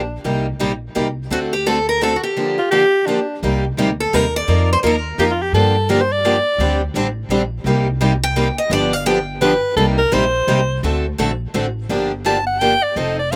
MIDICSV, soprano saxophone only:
0, 0, Header, 1, 2, 480
1, 0, Start_track
1, 0, Key_signature, -2, "minor"
1, 0, Tempo, 353565
1, 331, Time_signature, 3, 2, 24, 8
1, 18133, End_track
2, 0, Start_track
2, 0, Title_t, "Soprano saxophone"
2, 0, Program_c, 0, 64
2, 0, Note_on_c, 0, 62, 68
2, 331, Note_off_c, 0, 62, 0
2, 3507, Note_on_c, 0, 65, 78
2, 3670, Note_off_c, 0, 65, 0
2, 3678, Note_on_c, 0, 67, 100
2, 4158, Note_on_c, 0, 62, 74
2, 4178, Note_off_c, 0, 67, 0
2, 4643, Note_off_c, 0, 62, 0
2, 7048, Note_on_c, 0, 67, 71
2, 7117, Note_off_c, 0, 67, 0
2, 7208, Note_on_c, 0, 65, 79
2, 7360, Note_on_c, 0, 67, 75
2, 7380, Note_off_c, 0, 65, 0
2, 7514, Note_off_c, 0, 67, 0
2, 7522, Note_on_c, 0, 69, 85
2, 8003, Note_on_c, 0, 70, 88
2, 8023, Note_off_c, 0, 69, 0
2, 8152, Note_on_c, 0, 72, 85
2, 8172, Note_off_c, 0, 70, 0
2, 8312, Note_on_c, 0, 74, 88
2, 8332, Note_off_c, 0, 72, 0
2, 9269, Note_off_c, 0, 74, 0
2, 12782, Note_on_c, 0, 71, 90
2, 13231, Note_off_c, 0, 71, 0
2, 13255, Note_on_c, 0, 69, 86
2, 13390, Note_off_c, 0, 69, 0
2, 13547, Note_on_c, 0, 70, 95
2, 13756, Note_on_c, 0, 72, 90
2, 13777, Note_off_c, 0, 70, 0
2, 14714, Note_off_c, 0, 72, 0
2, 16644, Note_on_c, 0, 81, 75
2, 16916, Note_off_c, 0, 81, 0
2, 16924, Note_on_c, 0, 78, 85
2, 17106, Note_on_c, 0, 79, 96
2, 17126, Note_off_c, 0, 78, 0
2, 17417, Note_on_c, 0, 74, 81
2, 17438, Note_off_c, 0, 79, 0
2, 17600, Note_on_c, 0, 75, 74
2, 17621, Note_off_c, 0, 74, 0
2, 17897, Note_off_c, 0, 75, 0
2, 17904, Note_on_c, 0, 74, 77
2, 18072, Note_on_c, 0, 77, 78
2, 18093, Note_off_c, 0, 74, 0
2, 18133, Note_off_c, 0, 77, 0
2, 18133, End_track
0, 0, End_of_file